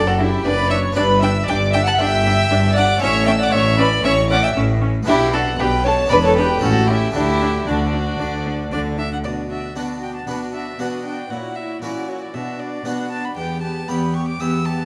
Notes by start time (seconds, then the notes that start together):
Already playing: F#1 F#2 A3 D4 F#4
0.07 F#4 A4 F#5
0.19 D4 E4 G4 E5
0.44 F#1 F#2 D4 B4 D5 B5
0.70 D4 C#5 E5 C#6
0.92 D4 E4 B4 D5
0.96 G1 G2 B5
1.21 D4 E5 G5 E6
1.47 G1 G2 D4 D5 G5 D6
1.73 D4 E5 G5 E6
1.85 F#5 A5 F#6
1.98 G1 G2 D4 E5 G5 E6
2.25 D4
2.50 G1 G2 D4
2.75 D4 D5 F#5 D6
2.97 C#4 E4 A4
3.02 A1 A2 C#4 C#5 E5 C#6
3.27 C#4 E5 G5 E6
3.40 D5 F#5 D6
3.52 A1 A2 C#4 C#5 E5 C#6
3.78 C#4 B4 D5 B5
4.04 A1 A2 C#4 C#5 E5 C#6
4.30 C#4 D5 F#5 D6
4.43 E5 G5 E6
4.56 A1 A2 C#4
4.82 C#4
5.03 B3 D4 F#4 E5
5.07 B1 B2 D4 E4 G4
5.33 D4 F#4 A4 F#5
5.59 B1 B2 D4 G4 B4 G5
5.84 D4 A4 C#5 A5
6.06 B3 D4 E4 D5
6.10 E1 E2 D4 B4 B5
6.23 A4 C#5 A5
6.36 D4 G4 B4 G5
6.58 A3 C#4 G4
6.62 A1 A2 C#4 F#4 A4 F#5
6.87 C#4 E4 G4 E5
7.10 A3 D4 F#4 G4
7.15 D2 D3 D4 E4 E5
7.42 D4
7.67 D2 D3 D4 F#4 D5
7.94 D4
8.19 D2 D3 D4
8.46 D4
8.72 D2 D3 D4 D5
8.98 D4 E5
9.13 F#5
9.24 B2 D4 F#4 D5
9.50 D4 F#4 D5 E5
9.75 B2 B3 D4 F#4 D5 F#5
10.01 D4 F#4 D5 G5
10.16 A5
10.27 B2 B3 D4 F#4 D5 B5
10.53 D4 F#4 D5 E5
10.79 B2 B3 D4 F#4 D5 F#5
11.04 D4 F#4 D5 G5
11.30 A#2 E4 F#4 C#5 F#5
11.56 E4 F#4 C#5 E5
11.82 A#2 C#4 E4 F#4 C#5 D5
12.08 E4 F#4 C#5
12.22 D5
12.33 B2 D4 F#4 B4 E5
12.59 D4 F#4 B4 D5
12.85 B2 B3 D4 F#4 B4 F#5
13.11 D4 F#4 B4 A5
13.24 B5
13.37 E2 B3 G4 B4 G5
13.62 B3 G4 B4 A5
13.88 E2 B3 E4 G4 B4 B5
14.13 B3 G4 B4 C#6
14.28 D6
14.39 E2 B3 E4 G4 B4 E6
14.65 B3 G4 B4 A5